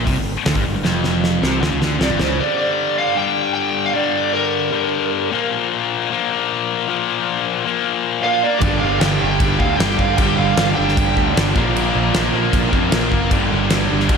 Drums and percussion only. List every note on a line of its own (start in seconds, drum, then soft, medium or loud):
0.07 kick medium
0.07 open hi-hat medium
0.46 snare loud
0.46 open hi-hat medium
0.55 kick medium
0.85 snare medium
1.04 snare medium
1.24 snare medium
1.43 snare medium
1.63 snare medium
1.82 snare medium
2.01 snare loud
2.19 snare medium
8.61 kick loud
8.61 crash medium
9.01 snare loud
9.01 crash medium
9.40 kick loud
9.40 crash medium
9.60 kick medium
9.80 snare loud
9.80 crash medium
9.90 snare soft
9.99 kick medium
10.18 kick loud
10.18 crash medium
10.57 snare loud
10.57 crash medium
10.88 snare soft
10.97 kick loud
10.97 crash medium
11.17 kick medium
11.37 snare loud
11.37 crash medium
11.47 snare soft
11.56 kick loud
11.76 crash medium
12.14 snare loud
12.14 crash medium
12.53 kick loud
12.53 crash medium
12.73 kick medium
12.92 snare loud
12.92 crash medium
13.12 kick medium
13.31 kick loud
13.31 crash medium
13.70 snare loud
13.70 crash medium
14.00 snare soft
14.09 kick loud
14.09 crash medium